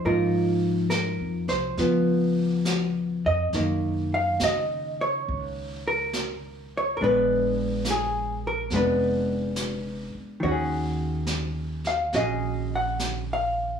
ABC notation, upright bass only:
X:1
M:4/4
L:1/8
Q:"Swing" 1/4=70
K:Db
V:1 name="Upright bass" clef=bass
A,,2- (3A,, F,, C,, D,,3 F,, | [K:F#] F,,2 C,2 C,,4 | A,,,4 E,,,3 z | D,,4 A,,,4 |]